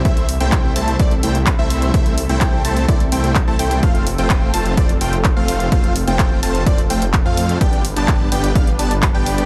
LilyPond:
<<
  \new Staff \with { instrumentName = "Digital synth lead" } { \time 4/4 \key c \major \tempo 4 = 127 e''8 r16 g''8. a''8 d''16 r16 g''16 r8 e''8. | e''8 r16 g''8. a''8 d''16 r16 g''8 r16 a''16 g''8 | f''8 r16 g''8. a''8 d''16 r16 g''16 r8 f''8. | f''8 r16 g''8. a''8 d''16 r16 g''16 r8 f''8. |
g''8 r16 a''8. g''8 f''16 r16 a''16 r8 g''8. | }
  \new Staff \with { instrumentName = "Analog synth pad" } { \time 4/4 \key c \major << { <a' e''>1~ | <a' e''>1 | f'1~ | f'1 |
<d' b'>1 | } \\ { c'1~ | c'1~ | c'1~ | c'1 |
g1 | } >> }
  \new Staff \with { instrumentName = "Supersaw synth" } { \time 4/4 \key c \major <a c' e' c'' e''>8 r16 <a c' e' c'' g''>8. <a c' e' c'' a''>8 <a c' e' c'' d''>16 r16 <a c' e' c'' g''>16 r8 <a c' e' c'' e''>8. | <a c' e' c'' e''>8 r16 <a c' e' c'' g''>8. <a c' e' c'' a''>8 <a c' e' c'' d''>16 r16 <a c' e' c'' g''>8 r16 <a c' e' c'' a''>16 <a c' e' c'' g''>8 | <a c' f' c'' f''>8 r16 <a c' f' c'' g''>8. <a c' f' c'' a''>8 <a c' f' c'' d''>16 r16 <a c' f' c'' g''>16 r8 <a c' f' c'' f''>8. | <a c' f' c'' f''>8 r16 <a c' f' c'' g''>8. <a c' f' c'' a''>8 <a c' f' c'' d''>16 r16 <a c' f' c'' g''>16 r8 <a c' f' c'' f''>8. |
<b d' g' d'' g''>8 r16 <b d' g' d'' a''>8. <b d' g' d'' g''>8 <b d' g' d'' f''>16 r16 <b d' g' d'' a''>16 r8 <b d' g' d'' g''>8. | }
  \new Staff \with { instrumentName = "Detuned saw bass" } { \clef bass \time 4/4 \key c \major c,8. c,8. c,8 c,8 c,8. c,8. | c,8. c,8. c,8 c,8 c,8. c,16 c,8 | f,,8. f,,8. f,,8 f,,8 f,,8. f,,8. | f,,8. f,,8. f,,8 f,,8 f,,8. f,8. |
g,,8. g,,8. g,,8 g,,8 g,,8. g,,8. | }
  \new DrumStaff \with { instrumentName = "Drums" } \drummode { \time 4/4 <hh bd>16 hh16 hho16 hh16 <hc hh bd>8 hho16 hh16 <hh bd>16 hh16 hho16 hh16 <hc hh bd>8 hho16 hh16 | <hh bd>16 hh16 hho16 hh16 <hc hh bd>8 hho16 hh16 <hh bd>16 hh16 hho16 hh16 <hc hh bd>8 hho16 hh16 | <hh bd>16 hh16 hho16 hh16 <hc hh bd>8 hho16 hh16 <hh bd>16 hh16 hho16 hh16 <hc hh bd>8 hho16 hh16 | <hh bd>16 hh16 hho16 hh16 <hc hh bd>8 hho16 hh16 <hh bd>16 hh16 hho16 hh16 <hc hh bd>8 hho16 hh16 |
<hh bd>16 hh16 hho16 hh16 <hc hh bd>8 hho16 hh16 <hh bd>16 hh16 hho16 hh16 <hc hh bd>8 hho16 hh16 | }
>>